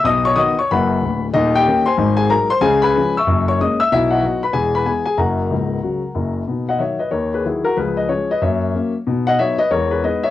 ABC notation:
X:1
M:4/4
L:1/8
Q:"Swing" 1/4=187
K:B
V:1 name="Grand piano"
[dd'] [cc'] [dd'] [cc'] [Bfb]3 z | [Dd] [=Gd=g]2 [=c^g=c']2 [^Gg] [Aa] [^B^b] | [Gg] [Bgb]2 [ec'e']2 [cc'] [dd'] [ee'] | [Ee] [Fdf]2 [Bb] [Gg] [Bb] [Gg] [Gg] |
[Afa]6- [Afa] z | z [df] [ce] [Bd] [Ac] [GB] [EG] [FA] | [GB] [Bd] [Gc] [Bd] [ce]3 z | z [df] [ce] [Bd] [Ac] [GB] [Bd] [ce] |]
V:2 name="Grand piano" clef=bass
[B,,,B,,]2 [D,B,F]2 [F,,,F,,]2 [=D,,,=D,,]2 | [D,,,D,,]2 [D,A,C]2 [G,,,G,,]2 [F,G,D]2 | [C,,C,]2 [^E,G,C]2 [F,,,F,,]2 [G,A,C]2 | [B,,,B,,]2 [F,B,D]2 [E,,,E,,]2 [E,B,]2 |
[F,,,F,,]2 [C,,,C,,]2 [C,F,F]2 [F,,,F,,]2 | [B,,D]2 [D,F,F]2 D,,2 [D,F,F]2 | [C,,^E,]2 [E,G,C]2 [F,,A,]2 [F,A,C]2 | [B,,D]2 [F,B,D]2 [E,,G,]2 [G,B,D]2 |]